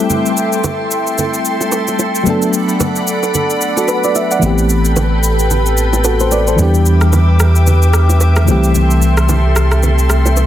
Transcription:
Already playing: G3 A3 C4 E4 A4 E5 G5 C6
0.10 low conga, shaker
0.26 shaker
0.37 shaker
0.53 shaker
0.64 high bongo, low conga, shaker
0.91 shaker
1.07 shaker
1.18 high bongo, low conga, shaker
1.34 shaker
1.45 shaker
1.61 low bongo, shaker
1.72 high bongo, shaker
1.88 low bongo, shaker
1.99 low bongo, shaker
2.15 shaker
2.23 F#3 A3 B3 D5 F#5 B5, low conga, shaker
2.28 D4 A4
2.42 shaker
2.53 shaker
2.69 shaker
2.80 high bongo, low conga, shaker
2.96 shaker
3.07 shaker
3.23 high bongo, shaker
3.34 high bongo, low conga, shaker
3.50 shaker
3.61 shaker
3.77 F#4 A4, low bongo, shaker
3.88 B4, high bongo, shaker
4.04 B4 D5, low bongo, shaker
4.15 E5, low bongo, shaker
4.31 D5 F#5, shaker
4.39 A1 E3 A3 B3 A4 B4 G5 B5, low conga, shaker
4.44 C4 G4
4.58 shaker
4.70 shaker
4.85 shaker
4.96 high bongo, low conga, shaker
5.24 shaker
5.39 shaker
5.51 high bongo, low conga, shaker
5.66 shaker
5.77 shaker
5.93 low bongo, shaker
6.04 F#4 A4, high bongo, shaker
6.20 A4 C5, low bongo, shaker
6.31 B4 D5, low bongo, shaker
6.48 A4 C5, shaker
6.56 E2 E3 G3 B3 B4 E5 D6, low conga, shaker
6.61 D4 G4
6.74 shaker
6.86 shaker
7.01 cross-stick, shaker
7.13 high bongo, low conga, shaker
7.40 cross-stick, shaker
7.56 shaker
7.67 high bongo, low conga, shaker
7.82 shaker
7.93 cross-stick, shaker
8.09 low bongo, shaker
8.21 high bongo, shaker
8.36 cross-stick, low bongo, shaker
8.45 C2 D3 G3 A3 A4 C6, low bongo, shaker
8.50 E3 C4 G4
8.64 shaker
8.75 low conga, shaker
8.91 shaker
9.02 shaker
9.17 cross-stick, shaker
9.29 high bongo, low conga, shaker
9.56 cross-stick, shaker
9.72 cross-stick, shaker
9.83 high bongo, low conga, shaker
9.99 shaker
10.10 cross-stick, shaker
10.26 low bongo, shaker
10.37 high bongo, shaker

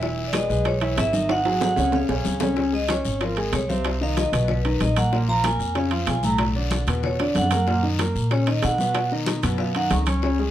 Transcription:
Already playing: E1
0.01 E3 E4 E5, high bongo, high conga, long guiro
0.17 high bongo, high conga
0.27 D5
0.33 G#3 G#4 B4 D#5, high bongo, high conga, high timbale, short guiro
0.49 B1 G#3 G#4 B4, high bongo, short guiro
0.65 C#5, high bongo, high conga, high timbale, long guiro
0.81 E3 E4 E5, high conga, high timbale
0.97 G#1 E3 E4 E5, high bongo, low bongo, high conga, high timbale, short guiro
1.13 D#3 D#4 D#5, high bongo, high conga, short guiro
1.29 F#5, high bongo, high conga, high timbale, long guiro
1.45 F#3 F#4 G#4, high bongo, high conga, high timbale
1.61 F#5, high bongo, high conga, low timbale, short guiro
1.76 C#2 C#3 C#4 C#5, high bongo, high conga, low conga, low timbale, short guiro
1.92 F5, low bongo, high conga, low timbale, long guiro
2.09 B1 C#3 C#4 C#5, low bongo, high conga, low timbale
2.25 C#2, low bongo, high conga, short guiro
2.40 C#3 C#4 C#5, low bongo, high conga, low timbale, short guiro
2.56 C#3 C#4 C#5, high bongo, high conga, long guiro
2.73 G#3 G#4 D#5 G#5, high bongo, high conga
2.88 C#4 C#5 C#6, high bongo, high conga, high timbale, short guiro
3.05 G#1, high bongo, short guiro
3.21 F3 F4 A#4 F5, high bongo, high conga, high timbale, long guiro
3.37 G#3 G#4 G#5, high conga, high timbale
3.53 C2 C#5, high bongo, low bongo, high conga, high timbale, low timbale, short guiro
3.69 C3 C4 C5 F5, high bongo, high conga, short guiro
3.85 high bongo, high conga, high timbale, long guiro
4.01 D#3 D#4 D#5 F5, high bongo, high conga
4.17 D#5, high bongo, high conga, high timbale, short guiro
4.32 B1 B2 B3 B4, high bongo, high conga, low conga, high timbale, short guiro
4.48 B4, high bongo, high conga, low conga, long guiro
4.65 D#3 D#4 D#5, high conga, high timbale
4.80 A#1 D#5, high bongo, low bongo, high conga, high timbale, short guiro
4.96 A#3 A#4 F#5 A#5, high bongo, high conga, high timbale, short guiro
5.12 A#2 A#3 A#4, high bongo, high conga, long guiro
5.28 F3 F4 F5 A#5, high bongo, high conga
5.44 A#3 A#4 G#5 A#5, high bongo, high conga, high timbale, short guiro
5.59 F2, high bongo, short guiro
5.75 C#3 C#4 C#5 F5, high bongo, high conga, high timbale, long guiro
5.91 F3 F4 F5, high conga, high timbale
6.07 B1 G#5, high bongo, low bongo, high conga, high timbale, low timbale, short guiro
6.23 A2 A3 A4 A#5, high bongo, high conga, short guiro
6.38 high bongo, high conga, high timbale, long guiro
6.55 D3 D4 D5, high bongo, high conga
6.71 high bongo, high conga, high timbale, short guiro
6.87 E2 B2 B3 B4, high bongo, high conga, low conga, high timbale, short guiro
7.03 C#5, high bongo, high conga, low conga, long guiro
7.20 D3 D4 D5, high bongo, high conga, high timbale
7.35 F#2 F#5, high conga, high timbale, low timbale, short guiro
7.41 low bongo
7.51 A#3 A#4 A#5, low bongo, high conga, high timbale, short guiro
7.67 A#2 A#3 A#4, high bongo, high conga, long guiro
7.83 D#3 D#4 D#5, high bongo, high conga
7.99 A#3 A#4 A#5, high bongo, high conga, high timbale, short guiro
8.15 A#2, high bongo, short guiro
8.31 C#3 C#4 C#5, high bongo, high conga, high timbale, long guiro
8.47 D#3 D#4 D#5, high conga, high timbale
8.62 B2 F#5, high bongo, low bongo, high conga, high timbale, low timbale, short guiro
8.78 B2 B3 B4, high bongo, high conga, short guiro
8.94 high bongo, high conga, high timbale, long guiro
9.10 D#3 D#4 D#5, high bongo, high conga
9.26 high bongo, high conga, high timbale, short guiro
9.42 F#2 B2 B3 B4, high bongo, high conga, low conga, high timbale, short guiro
9.58 F5, high bongo, high conga, long guiro
9.75 D#3 D#4 D#5 F#5, high conga, high timbale
9.90 C#2 C#6, high bongo, low bongo, high conga, high timbale, low timbale, short guiro
10.06 C#4 C#5 C#6, high bongo, high conga, high timbale, short guiro
10.22 C#3 C#4 C#5, high bongo, high conga, long guiro
10.39 G#3 G#4 G#5, high bongo, high conga

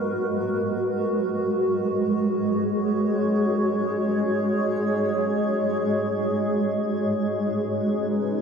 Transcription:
Already playing: G#3 F#4 A#4 B4
1.69 G#4
1.79 C#5
6.97 C#4
7.12 B4
7.62 D#4

